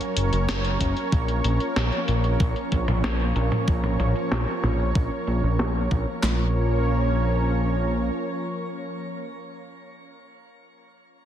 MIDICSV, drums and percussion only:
0, 0, Header, 1, 2, 480
1, 0, Start_track
1, 0, Key_signature, -5, "minor"
1, 0, Tempo, 638298
1, 846, Time_signature, 4, 2, 24, 8
1, 8461, End_track
2, 0, Start_track
2, 0, Title_t, "Drums"
2, 5, Note_on_c, 9, 42, 40
2, 80, Note_off_c, 9, 42, 0
2, 125, Note_on_c, 9, 42, 93
2, 200, Note_off_c, 9, 42, 0
2, 246, Note_on_c, 9, 42, 39
2, 321, Note_off_c, 9, 42, 0
2, 366, Note_on_c, 9, 38, 118
2, 366, Note_on_c, 9, 42, 67
2, 441, Note_off_c, 9, 38, 0
2, 441, Note_off_c, 9, 42, 0
2, 486, Note_on_c, 9, 42, 40
2, 561, Note_off_c, 9, 42, 0
2, 606, Note_on_c, 9, 36, 61
2, 606, Note_on_c, 9, 42, 92
2, 681, Note_off_c, 9, 36, 0
2, 681, Note_off_c, 9, 42, 0
2, 727, Note_on_c, 9, 42, 39
2, 802, Note_off_c, 9, 42, 0
2, 845, Note_on_c, 9, 42, 66
2, 846, Note_on_c, 9, 36, 116
2, 920, Note_off_c, 9, 42, 0
2, 921, Note_off_c, 9, 36, 0
2, 966, Note_on_c, 9, 42, 39
2, 1041, Note_off_c, 9, 42, 0
2, 1086, Note_on_c, 9, 42, 90
2, 1161, Note_off_c, 9, 42, 0
2, 1206, Note_on_c, 9, 42, 37
2, 1281, Note_off_c, 9, 42, 0
2, 1326, Note_on_c, 9, 38, 118
2, 1326, Note_on_c, 9, 42, 64
2, 1401, Note_off_c, 9, 38, 0
2, 1401, Note_off_c, 9, 42, 0
2, 1446, Note_on_c, 9, 42, 38
2, 1521, Note_off_c, 9, 42, 0
2, 1564, Note_on_c, 9, 42, 90
2, 1639, Note_off_c, 9, 42, 0
2, 1685, Note_on_c, 9, 42, 38
2, 1760, Note_off_c, 9, 42, 0
2, 1805, Note_on_c, 9, 36, 117
2, 1805, Note_on_c, 9, 42, 64
2, 1880, Note_off_c, 9, 42, 0
2, 1881, Note_off_c, 9, 36, 0
2, 1926, Note_on_c, 9, 42, 39
2, 2001, Note_off_c, 9, 42, 0
2, 2045, Note_on_c, 9, 36, 59
2, 2045, Note_on_c, 9, 42, 88
2, 2120, Note_off_c, 9, 36, 0
2, 2120, Note_off_c, 9, 42, 0
2, 2166, Note_on_c, 9, 42, 38
2, 2166, Note_on_c, 9, 45, 85
2, 2242, Note_off_c, 9, 42, 0
2, 2242, Note_off_c, 9, 45, 0
2, 2286, Note_on_c, 9, 38, 122
2, 2286, Note_on_c, 9, 42, 64
2, 2361, Note_off_c, 9, 38, 0
2, 2361, Note_off_c, 9, 42, 0
2, 2406, Note_on_c, 9, 42, 37
2, 2481, Note_off_c, 9, 42, 0
2, 2525, Note_on_c, 9, 42, 90
2, 2601, Note_off_c, 9, 42, 0
2, 2646, Note_on_c, 9, 42, 38
2, 2646, Note_on_c, 9, 45, 83
2, 2721, Note_off_c, 9, 42, 0
2, 2721, Note_off_c, 9, 45, 0
2, 2765, Note_on_c, 9, 36, 112
2, 2766, Note_on_c, 9, 42, 62
2, 2841, Note_off_c, 9, 36, 0
2, 2841, Note_off_c, 9, 42, 0
2, 2885, Note_on_c, 9, 42, 37
2, 2885, Note_on_c, 9, 45, 59
2, 2961, Note_off_c, 9, 42, 0
2, 2961, Note_off_c, 9, 45, 0
2, 3006, Note_on_c, 9, 42, 85
2, 3006, Note_on_c, 9, 45, 59
2, 3081, Note_off_c, 9, 42, 0
2, 3081, Note_off_c, 9, 45, 0
2, 3126, Note_on_c, 9, 42, 35
2, 3201, Note_off_c, 9, 42, 0
2, 3246, Note_on_c, 9, 38, 114
2, 3246, Note_on_c, 9, 42, 59
2, 3321, Note_off_c, 9, 38, 0
2, 3321, Note_off_c, 9, 42, 0
2, 3366, Note_on_c, 9, 42, 37
2, 3441, Note_off_c, 9, 42, 0
2, 3486, Note_on_c, 9, 38, 60
2, 3486, Note_on_c, 9, 42, 83
2, 3486, Note_on_c, 9, 45, 86
2, 3562, Note_off_c, 9, 38, 0
2, 3562, Note_off_c, 9, 42, 0
2, 3562, Note_off_c, 9, 45, 0
2, 3606, Note_on_c, 9, 42, 34
2, 3681, Note_off_c, 9, 42, 0
2, 3725, Note_on_c, 9, 42, 59
2, 3726, Note_on_c, 9, 36, 117
2, 3801, Note_off_c, 9, 36, 0
2, 3801, Note_off_c, 9, 42, 0
2, 3846, Note_on_c, 9, 42, 37
2, 3921, Note_off_c, 9, 42, 0
2, 3965, Note_on_c, 9, 42, 84
2, 4041, Note_off_c, 9, 42, 0
2, 4086, Note_on_c, 9, 42, 36
2, 4161, Note_off_c, 9, 42, 0
2, 4206, Note_on_c, 9, 38, 116
2, 4206, Note_on_c, 9, 42, 61
2, 4281, Note_off_c, 9, 38, 0
2, 4281, Note_off_c, 9, 42, 0
2, 4325, Note_on_c, 9, 42, 37
2, 4401, Note_off_c, 9, 42, 0
2, 4444, Note_on_c, 9, 42, 85
2, 4445, Note_on_c, 9, 36, 60
2, 4520, Note_off_c, 9, 42, 0
2, 4521, Note_off_c, 9, 36, 0
2, 4565, Note_on_c, 9, 42, 35
2, 4640, Note_off_c, 9, 42, 0
2, 4685, Note_on_c, 9, 38, 94
2, 4685, Note_on_c, 9, 39, 79
2, 4760, Note_off_c, 9, 38, 0
2, 4760, Note_off_c, 9, 39, 0
2, 8461, End_track
0, 0, End_of_file